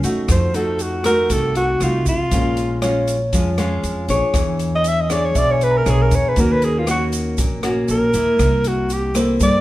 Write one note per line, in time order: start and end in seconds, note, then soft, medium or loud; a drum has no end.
0.00 0.15 F#2 medium
0.00 0.26 C#3 medium
0.00 0.50 A3 medium
0.00 closed hi-hat soft
0.00 shaker medium
0.04 0.50 D#4 medium
0.04 0.50 F#4 medium
0.28 1.26 F2 medium
0.28 1.28 F3 medium
0.28 0.57 C5 medium
0.28 kick medium
0.28 cross-stick medium
0.28 closed hi-hat medium
0.28 shaker medium
0.54 1.01 A3 medium
0.54 1.01 D#4 medium
0.54 1.01 F#4 medium
0.54 0.83 A4 medium
0.54 closed hi-hat soft
0.54 shaker soft
0.79 1.05 F#4 medium
0.79 closed hi-hat soft
0.79 shaker medium
1.04 1.77 A3 medium
1.04 1.77 D#4 medium
1.04 1.77 F#4 medium
1.04 1.33 A#4 loud
1.04 cross-stick medium
1.04 closed hi-hat soft
1.04 shaker medium
1.30 1.77 C2 medium
1.30 2.29 C3 medium
1.30 1.56 A4 medium
1.30 kick medium
1.30 closed hi-hat medium
1.30 shaker medium
1.55 1.85 F#4 medium
1.55 closed hi-hat soft
1.55 shaker soft
1.81 2.04 C2 medium
1.81 2.15 A3 medium
1.81 2.15 D#4 medium
1.81 2.07 F4 medium
1.81 2.16 F#4 medium
1.81 cross-stick soft
1.81 closed hi-hat soft
1.81 shaker soft
2.06 2.18 C2 medium
2.06 2.79 F4 medium
2.06 kick medium
2.06 closed hi-hat soft
2.06 shaker medium
2.31 3.29 A#1 medium
2.31 3.31 A#2 medium
2.31 2.79 G#3 medium
2.31 2.79 C#4 soft
2.31 2.79 F4 medium
2.31 kick medium
2.31 closed hi-hat medium
2.31 shaker medium
2.57 closed hi-hat soft
2.57 shaker soft
2.82 3.15 G#3 medium
2.82 3.15 C#4 medium
2.82 3.16 F4 medium
2.82 3.79 C#5 medium
2.82 cross-stick medium
2.82 closed hi-hat soft
2.82 shaker medium
3.08 closed hi-hat soft
3.08 shaker medium
3.32 3.80 F2 medium
3.32 4.32 F3 medium
3.32 3.48 G#3 medium
3.32 3.48 C#4 medium
3.32 3.48 F4 medium
3.32 kick medium
3.32 closed hi-hat medium
3.32 shaker medium
3.58 4.05 G#3 medium
3.58 4.05 C#4 medium
3.58 4.05 F4 medium
3.58 cross-stick medium
3.58 closed hi-hat soft
3.58 shaker soft
3.83 4.07 F2 medium
3.83 closed hi-hat soft
3.83 shaker soft
4.08 4.20 A#1 medium
4.08 5.06 D4 medium
4.08 5.06 G#4 medium
4.08 5.07 C#5 medium
4.08 closed hi-hat soft
4.08 shaker medium
4.34 5.31 E2 medium
4.34 5.33 E3 medium
4.34 kick medium
4.34 cross-stick medium
4.34 closed hi-hat soft
4.34 shaker medium
4.59 closed hi-hat soft
4.59 shaker soft
4.76 4.90 D#5 medium
4.84 closed hi-hat soft
4.84 shaker medium
4.88 5.02 E5 loud
5.01 5.12 D#5 medium
5.10 5.82 D4 medium
5.10 5.82 G#4 medium
5.10 5.83 C#5 medium
5.10 5.26 D5 medium
5.10 cross-stick medium
5.10 closed hi-hat soft
5.10 shaker medium
5.25 5.40 C#5 medium
5.35 5.82 B1 medium
5.35 6.34 B2 medium
5.35 5.53 D5 loud
5.35 6.33 E5 soft
5.35 kick medium
5.35 closed hi-hat medium
5.35 shaker medium
5.51 5.65 C#5 medium
5.51 6.48 G#5 soft
5.61 5.79 B4 loud
5.61 closed hi-hat soft
5.61 shaker soft
5.71 6.63 A#5 soft
5.77 5.91 A#4 medium
5.86 6.10 B1 medium
5.86 6.34 D4 medium
5.86 6.35 G#4 medium
5.86 6.35 C#5 medium
5.86 cross-stick medium
5.86 closed hi-hat soft
5.86 shaker medium
5.90 6.04 G#4 medium
6.02 6.17 A#4 medium
6.11 6.23 E2 medium
6.11 kick medium
6.11 closed hi-hat soft
6.11 shaker medium
6.15 6.30 C#5 loud
6.29 6.42 B4 medium
6.36 7.34 D#2 medium
6.36 7.35 D#3 soft
6.36 6.83 A#3 medium
6.36 6.84 C#4 medium
6.36 6.84 F#4 medium
6.36 kick medium
6.36 closed hi-hat medium
6.36 shaker medium
6.40 6.54 A#4 medium
6.53 6.66 B4 medium
6.62 6.80 G#4 medium
6.62 closed hi-hat soft
6.62 shaker soft
6.79 6.89 F4 medium
6.87 7.59 A#3 medium
6.87 7.59 C#4 medium
6.87 7.59 F#4 medium
6.87 7.05 F#4 medium
6.87 cross-stick medium
6.87 closed hi-hat soft
6.87 shaker medium
7.13 closed hi-hat soft
7.13 shaker medium
7.38 7.85 A#1 medium
7.38 8.37 A#2 medium
7.38 kick medium
7.38 closed hi-hat medium
7.38 shaker medium
7.63 8.10 A#3 medium
7.63 8.10 C#4 medium
7.63 8.10 F#4 medium
7.63 cross-stick medium
7.63 closed hi-hat soft
7.63 shaker soft
7.88 8.12 A#1 medium
7.88 8.69 A#4 loud
7.88 closed hi-hat soft
7.88 shaker medium
8.14 8.26 D#2 medium
8.14 9.11 A#3 medium
8.14 9.11 E4 medium
8.14 closed hi-hat soft
8.14 shaker medium
8.39 9.36 C2 medium
8.39 9.38 C3 medium
8.39 kick medium
8.39 cross-stick medium
8.39 closed hi-hat medium
8.39 shaker medium
8.64 8.94 F#4 medium
8.64 closed hi-hat soft
8.64 shaker soft
8.90 9.16 G4 medium
8.90 closed hi-hat soft
8.90 shaker medium
9.15 9.61 A#3 medium
9.15 9.61 E4 medium
9.15 9.61 A4 medium
9.15 9.61 C5 medium
9.15 cross-stick medium
9.15 closed hi-hat soft
9.15 shaker medium
9.40 9.61 G2 medium
9.40 9.61 G3 medium
9.40 9.61 A4 soft
9.40 9.61 D5 loud
9.40 kick medium
9.40 closed hi-hat medium
9.40 shaker medium